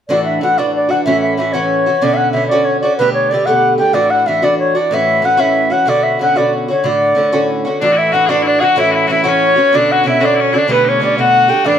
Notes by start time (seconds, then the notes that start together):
0.09 A2 E3 D4 F#4 D5
0.25 E5
0.41 A2 E3 D4 F#4 F#5
0.58 A2 E3 D4 F#4 D5
0.75 D5
0.89 E3 D4 F#4 F#5
1.04 A2 E3 C#4 F#4 E5
1.22 E5
1.37 A2 E3 C#4 F#4 E5
1.52 A2 E3 C#4 F#4 C#5
1.86 E3 C#4 F#4
2.01 B2 D3 C#4 F#4 D5
2.14 E5 F#5
2.32 B2 D3 C#4 E5
2.36 F#4
2.48 F#4 D5
2.52 B2 D3 C#4
2.65 C#5
2.81 F#4 D5
2.85 D3 C#4
2.98 B2 D3 A3 G4 B4
3.13 C#5
3.30 B2 D3 A3 G4 D5
3.46 B2 D3 A3 G4 F#5
3.78 D3 A3 G4 G5
3.93 A2 E3 D4 F#4 D5
4.10 F#5
4.26 A2 E3 D4 F#4 E5
4.42 A2 E3 D4 F#4 D5
4.59 C#5
4.75 E3 D4 F#4 D5
4.91 A2 E3 C#4 F#4 E5
5.22 A2 E3 C#4 F#4 F#5
5.37 A2 E3 C#4 F#4 E5
5.70 E3 C#4 F#4 F#5
5.86 B2 D3 C#4 F#4 D5
6.03 E5
6.19 B2 D3 C#4 F#4 F#5
6.36 B2 D3 C#4 F#4 D5
6.68 D3 C#4 F#4 C#5
6.84 A2 D3 F#4 D5
7.15 A2 D3 C#4 F#4
7.32 A2 D3 C#4 F#4
7.65 D3 C#4 F#4
7.81 A2 E3 D4 F#4 D5
7.92 E4 F#4
7.98 E5
8.12 A2 E3 D4 F#4 F#5
8.26 D4 F#4 G#4 D5
8.30 A2 E3 D4
8.42 E4 D5
8.47 D4
8.59 E3 D4 F#4 G#4 F#5
8.64 F#4
8.76 A2 E3 C#4 E4 F#4 E5
8.91 E4 F#4 E5
9.07 A2 E3 C#4 F#4 E5
9.12 E4
9.24 A2 E3 C#4 F#4 C#5
9.56 E3 C#4 F#4
9.73 B2 D3 C#4 D4 F#4 D5
9.92 F#4 F#5
10.04 B2 D3 C#4 E4 F#4
10.08 E5
10.20 B2 D3 C#4 D4 F#4
10.25 D5
10.35 E4
10.39 C#4 C#5
10.53 D3 C#4 D4 E4 F#4 D5
10.68 B2 D3 A3 G4 B4
10.72 B3
10.84 C#4 D#4
10.89 C#5
11.00 B2 D3 A3 G4
11.04 D5
11.18 B2 D3 A3 F#4 F#5
11.48 D3 A3 G4 G5
11.64 A2 E3 D4 F#4 D5